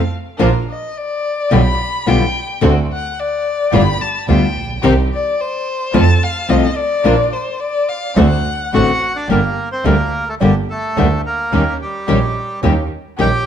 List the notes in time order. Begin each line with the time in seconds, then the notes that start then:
0.39 A#1 F3 A#3 D4 F4 A#4
0.70 D#5
0.97 D5
1.51 B1 B2 D3 G3 B3 F4 G4 B5
2.06 B1 B2 D3 G3 B3 F4 G4 G5
2.61 D2 D3 A3 C4 D4 F#4
2.93 F#5
3.19 D5
3.72 G1 G3 B3 F4 G4 B5
4.01 A5
4.28 D2 G3 B3 F4 G4 G5
4.56 A#1
4.83 C2 C3 D#3 G3 C4 D#4 G4
5.13 D5
5.40 C5
5.93 F2 C3 F3 A3 C4 F4 A4 A5
6.23 F5
6.49 C2 C3 F3 A3 C4 F4 A4 D#5
6.76 D5
7.04 A#1 F3 A#3 D4 F4 A#4
7.32 C5
7.60 D5
7.89 F5
8.16 D2 D3 A3 C4 D4 F#4 C5 F#5
8.72 A1 D3 A3 C4 D4 F#4 C5 F#5
9.16 D4 D5
9.28 G1 D3 G3 A#3 D4 G4 A#4
9.72 C4 C5
9.84 D2 D3 G3 A#3 D4 G4 A#4
10.29 A3 A4
10.40 G1 D3 G3 A#3 D4 G4
10.70 A3 A4
10.96 D2 D3 G3 A#3 D4 G4
11.26 A#3 A#4
11.52 D#2 D#3 G3 C#4 D#4 G4
11.82 G3 G4
12.08 A#1 D#3 G3 C#4 D#4 G4
12.63 D#2 D#3 G3 C#4 D#4 G4
13.19 A#1 D#3 G3 C#4 D#4 G4 G5